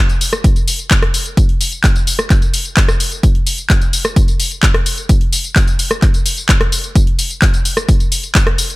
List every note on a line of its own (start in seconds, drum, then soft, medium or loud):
0.09 closed hi-hat soft
0.09 tambourine soft
0.21 open hi-hat loud
0.21 tambourine medium
0.33 cross-stick medium
0.33 closed hi-hat soft
0.33 tambourine soft
0.44 kick loud
0.44 closed hi-hat medium
0.44 tambourine soft
0.56 closed hi-hat soft
0.56 tambourine soft
0.68 open hi-hat loud
0.68 tambourine medium
0.79 closed hi-hat soft
0.79 tambourine soft
0.91 kick loud
0.91 clap loud
0.91 closed hi-hat medium
0.91 tambourine soft
1.02 cross-stick medium
1.02 closed hi-hat soft
1.14 open hi-hat loud
1.14 tambourine medium
1.26 tambourine soft
1.37 kick loud
1.37 closed hi-hat medium
1.37 tambourine soft
1.49 closed hi-hat soft
1.61 open hi-hat loud
1.61 tambourine medium
1.72 closed hi-hat soft
1.72 tambourine soft
1.84 kick loud
1.84 clap loud
1.84 closed hi-hat medium
1.84 tambourine soft
1.96 closed hi-hat soft
1.96 tambourine soft
2.07 open hi-hat loud
2.07 tambourine medium
2.19 cross-stick medium
2.19 tambourine soft
2.30 kick loud
2.30 clap medium
2.30 closed hi-hat medium
2.30 tambourine soft
2.42 closed hi-hat soft
2.42 tambourine soft
2.54 open hi-hat loud
2.54 tambourine medium
2.65 tambourine soft
2.77 kick loud
2.77 clap loud
2.77 closed hi-hat medium
2.77 tambourine soft
2.88 cross-stick medium
2.88 closed hi-hat soft
2.88 tambourine soft
3.00 open hi-hat loud
3.00 tambourine medium
3.12 closed hi-hat soft
3.12 tambourine soft
3.23 kick loud
3.23 closed hi-hat medium
3.23 tambourine soft
3.35 closed hi-hat soft
3.47 open hi-hat loud
3.47 tambourine medium
3.58 closed hi-hat soft
3.58 tambourine soft
3.70 kick loud
3.70 clap loud
3.70 closed hi-hat medium
3.70 tambourine soft
3.81 closed hi-hat soft
3.81 tambourine soft
3.93 open hi-hat loud
3.93 tambourine medium
4.05 cross-stick medium
4.05 tambourine soft
4.16 kick loud
4.16 closed hi-hat medium
4.16 tambourine soft
4.28 closed hi-hat soft
4.28 tambourine soft
4.40 open hi-hat loud
4.40 tambourine medium
4.51 closed hi-hat soft
4.51 tambourine soft
4.63 kick loud
4.63 clap loud
4.63 closed hi-hat medium
4.63 tambourine soft
4.74 cross-stick medium
4.74 closed hi-hat soft
4.86 open hi-hat loud
4.86 tambourine medium
4.98 closed hi-hat soft
4.98 tambourine soft
5.09 kick loud
5.09 closed hi-hat medium
5.09 tambourine soft
5.21 closed hi-hat soft
5.33 open hi-hat loud
5.33 tambourine medium
5.44 closed hi-hat soft
5.44 tambourine soft
5.56 kick loud
5.56 clap loud
5.56 closed hi-hat medium
5.56 tambourine soft
5.67 closed hi-hat soft
5.67 tambourine soft
5.79 open hi-hat loud
5.79 tambourine medium
5.91 cross-stick medium
5.91 tambourine soft
6.02 kick loud
6.02 clap medium
6.02 closed hi-hat medium
6.02 tambourine soft
6.14 closed hi-hat soft
6.14 tambourine soft
6.26 open hi-hat loud
6.26 tambourine medium
6.37 closed hi-hat soft
6.37 tambourine soft
6.49 kick loud
6.49 clap loud
6.49 closed hi-hat medium
6.49 tambourine soft
6.61 cross-stick medium
6.61 closed hi-hat soft
6.72 open hi-hat loud
6.72 tambourine medium
6.84 closed hi-hat soft
6.84 tambourine soft
6.95 kick loud
6.95 closed hi-hat loud
6.95 tambourine soft
7.07 closed hi-hat soft
7.19 open hi-hat loud
7.19 tambourine medium
7.30 closed hi-hat soft
7.30 tambourine soft
7.42 kick loud
7.42 clap loud
7.42 closed hi-hat loud
7.42 tambourine soft
7.54 closed hi-hat soft
7.54 tambourine soft
7.65 open hi-hat loud
7.65 tambourine medium
7.77 cross-stick medium
7.77 closed hi-hat soft
7.77 tambourine soft
7.89 kick loud
7.89 closed hi-hat medium
7.89 tambourine soft
8.00 closed hi-hat soft
8.00 tambourine soft
8.12 open hi-hat loud
8.12 tambourine medium
8.23 closed hi-hat soft
8.23 tambourine soft
8.35 kick loud
8.35 clap loud
8.35 closed hi-hat loud
8.35 tambourine soft
8.47 cross-stick medium
8.47 closed hi-hat soft
8.58 open hi-hat loud
8.58 tambourine medium
8.70 closed hi-hat soft
8.70 tambourine soft